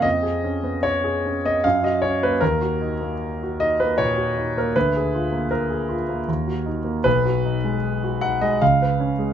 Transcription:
\new Staff \with { instrumentName = "Grand piano" } { \time 3/4 \key dis \minor \tempo 4 = 77 << { dis''4 cis''8. dis''16 eis''16 dis''16 cis''16 b'16 | ais'4. dis''16 b'16 cis''8. ais'16 | b'4 ais'4. r8 | b'4. fis''16 dis''16 eis''4 | } \\ { eis,16 gis'16 cis'16 b8 gis'16 cis'16 b16 fis,16 fis'16 cis'16 ais16 | dis,16 fis'16 dis'16 ais8 fis'16 dis'16 ais16 ais,16 fis'16 dis'16 ais16 | d,16 gis'16 eis'16 ais8 gis'16 eis'16 ais16 dis,16 fis'16 dis'16 ais16 | b,,16 fis'16 dis'16 gis8 fis'16 dis'16 gis16 cis,16 b'16 cis'16 gis16 | } >> }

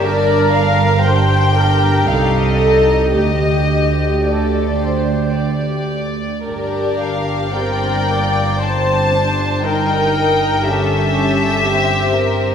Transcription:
<<
  \new Staff \with { instrumentName = "Violin section" } { \time 3/4 \key g \minor \tempo 4 = 57 d''8 f''8 g''4 f''16 ees''8. | ees''4 d''4 r4 | d''8 f''8 g''4 a''4 | g''4 e''2 | }
  \new Staff \with { instrumentName = "Viola section" } { \time 3/4 \key g \minor bes'4 c''8 bes'8 a'4 | g'2~ g'8 r8 | g'4 bes'8 d''8 c''4 | bes'4 g'2 | }
  \new Staff \with { instrumentName = "Violin section" } { \time 3/4 \key g \minor << { bes'4 g'2 | g'4 a'8 c''8 d''4 | bes'4 d''4 c''4 | bes'4 a'4 g'8 bes'8 | } \\ { d'4 d'4 ees'4 | g'4 r2 | d'4 c'8 bes8 c'8 d'8 | ees'4 des'4 c'4 | } >> }
  \new Staff \with { instrumentName = "Cello section" } { \clef bass \time 3/4 \key g \minor g,2 c,4 | d,2. | g,2.~ | g,2. | }
  \new Staff \with { instrumentName = "Double bass section" } { \clef bass \time 3/4 \key g \minor g,,2 c,4 | d,2. | g,,2.~ | g,,2. | }
>>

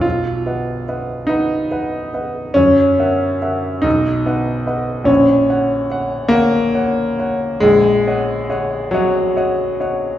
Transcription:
\new Staff \with { instrumentName = "Grand piano" } { \time 12/8 \key b \lydian \tempo 4. = 47 << { b,,8 <b' dis'' fis''>8 <b' dis'' fis''>8 <b' dis'' fis''>8 <b' dis'' fis''>8 <b' dis'' fis''>8 fis,8 <ais' e'' fis''>8 <ais' e'' fis''>8 b,,8 <b' dis'' fis''>8 <b' dis'' fis''>8 | \key ees \dorian bes,,8 <des'' ges''>8 <des'' ges''>8 <des'' ges''>8 <des'' ges''>8 <des'' ges''>8 bes,,8 <des'' ees'' ges''>8 <des'' ees'' ges''>8 <des'' ees'' ges''>8 <des'' ees'' ges''>8 <des'' ees'' ges''>8 | } \\ { eis'4. dis'4. cis'4. dis'4. | des'4. bes4. aes4. ges8 r4 | } >> }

